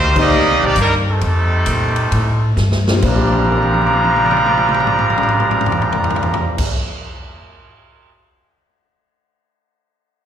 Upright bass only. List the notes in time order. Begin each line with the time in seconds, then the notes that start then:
Already playing: D2
0.30 D#2
0.46 C2
0.61 A#1
0.76 G2
1.21 F2
1.67 A#2
2.12 A2
2.57 G2
3.02 A#1